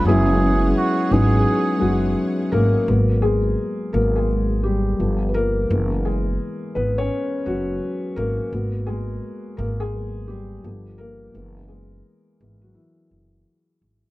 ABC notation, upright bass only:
X:1
M:4/4
L:1/16
Q:"Swing 16ths" 1/4=85
K:F#mix
V:1 name="Upright bass" clef=bass
F,,,4 z2 G,,,2 z2 F,,,2 z2 G,,, z | G,,,4 z2 G,,,6 =G,,,4 | F,,,4 z2 G,,,2 z2 F,,,2 z2 G,,, z | G,,,4 z2 G,,,6 =G,,,4 |
F,,,4 z2 G,,,2 z2 F,,,2 z2 G,,, z |]